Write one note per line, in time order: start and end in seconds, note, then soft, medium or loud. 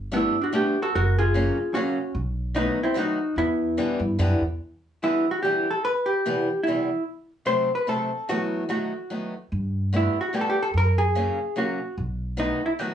0.00 0.25 G1 medium
0.12 0.34 G3 medium
0.12 0.35 A3 soft
0.12 0.35 B3 medium
0.12 0.39 B3 soft
0.12 0.35 D4 medium
0.17 0.43 E4 medium
0.41 0.54 D4 soft
0.41 0.55 F#4 medium
0.52 0.75 G3 soft
0.52 0.75 A3 soft
0.52 0.75 B3 soft
0.52 0.76 D4 medium
0.52 0.80 D4 medium
0.52 0.82 G4 medium
0.82 0.94 F#4 medium
0.82 0.95 A4 medium
0.95 1.48 F#1 medium
0.95 1.15 F#4 medium
0.95 1.18 A#4 medium
1.19 1.73 F4 medium
1.19 1.78 G#4 loud
1.34 1.57 C#3 medium
1.34 1.57 F#3 soft
1.34 1.57 A#3 soft
1.34 1.57 C#4 medium
1.74 1.97 C#3 medium
1.74 1.97 F#3 medium
1.74 1.97 A#3 soft
1.74 2.12 C#4 medium
1.74 1.98 C#4 medium
1.74 2.12 F#4 medium
2.15 2.67 B1 medium
2.55 2.77 D#3 medium
2.55 2.77 F#3 soft
2.55 2.78 A3 medium
2.55 2.78 B3 medium
2.55 2.82 B3 medium
2.55 2.83 D#4 medium
2.83 2.96 C4 medium
2.83 2.97 E4 medium
2.94 3.17 D#3 medium
2.94 3.18 F#3 soft
2.94 3.18 A3 medium
2.94 3.18 B3 medium
2.94 3.37 F#4 medium
2.99 3.36 D#4 medium
3.36 3.77 E2 medium
3.36 4.16 B3 medium
3.36 4.15 E4 loud
3.77 4.00 D3 soft
3.77 4.00 E3 medium
3.77 4.00 G3 medium
3.77 4.00 B3 medium
3.99 4.17 G2 medium
4.18 4.39 F#2 medium
4.18 4.41 D3 medium
4.18 4.42 E3 medium
4.18 4.42 G3 medium
4.18 4.42 B3 medium
4.40 4.58 E2 medium
5.03 5.24 D3 soft
5.03 5.25 E3 soft
5.03 5.25 G3 soft
5.03 5.25 B3 medium
5.03 5.31 E4 medium
5.31 5.42 F#4 medium
5.43 5.66 D3 medium
5.43 5.66 E3 soft
5.43 5.66 G3 soft
5.43 5.66 B3 medium
5.43 5.71 G4 medium
5.71 5.84 A4 medium
5.85 6.07 B4 loud
6.06 6.63 G4 medium
6.26 6.47 E2 medium
6.26 6.47 C3 medium
6.26 6.47 E3 medium
6.26 6.47 G3 soft
6.26 6.48 B3 medium
6.63 6.88 E2 medium
6.63 7.02 E4 medium
6.68 6.89 C3 soft
6.68 6.89 E3 soft
6.68 6.89 G3 soft
6.68 6.89 B3 soft
7.46 7.68 C3 medium
7.46 7.69 F#3 medium
7.46 7.69 A3 soft
7.46 7.69 C4 medium
7.46 7.75 C5 medium
7.75 7.89 B4 medium
7.87 8.10 C3 soft
7.87 8.10 F#3 soft
7.87 8.10 A3 soft
7.87 8.10 C4 medium
7.87 8.31 A4 medium
8.29 8.62 E3 medium
8.29 8.62 F#3 medium
8.29 8.63 A3 medium
8.29 8.63 B3 medium
8.29 8.69 F#4 medium
8.69 8.91 D#3 medium
8.69 8.92 F#3 soft
8.69 8.92 A3 medium
8.69 8.92 B3 soft
8.69 9.29 F#4 medium
9.10 9.33 D#3 soft
9.10 9.33 F#3 soft
9.10 9.33 A3 soft
9.10 9.33 B3 soft
9.52 10.06 G2 medium
9.93 10.15 D3 medium
9.93 10.16 G3 soft
9.93 10.16 A3 soft
9.93 10.16 B3 soft
9.93 10.20 E4 medium
10.21 10.34 F#4 medium
10.33 10.56 D3 soft
10.33 10.56 G3 soft
10.33 10.56 A3 soft
10.33 10.56 B3 medium
10.33 10.42 G4 medium
10.41 10.48 A4 medium
10.50 10.63 G4 medium
10.63 10.68 A4 medium
10.74 11.27 F#2 medium
10.74 10.98 A#4 loud
10.98 11.59 G#4 loud
11.15 11.38 C#3 medium
11.15 11.38 F#3 soft
11.15 11.38 A#3 medium
11.15 11.38 C#4 medium
11.56 11.78 C#3 soft
11.56 11.79 F#3 medium
11.56 11.79 A#3 soft
11.56 11.79 C#4 soft
11.56 11.96 F#4 medium
11.98 12.51 B1 medium
12.37 12.60 D#3 medium
12.37 12.60 F#3 soft
12.37 12.60 A3 soft
12.37 12.60 B3 medium
12.37 12.65 D#4 medium
12.66 12.71 E4 medium
12.79 12.94 D#3 medium
12.79 12.94 F#3 soft
12.79 12.94 A3 soft
12.79 12.94 B3 medium
12.79 12.94 F#4 medium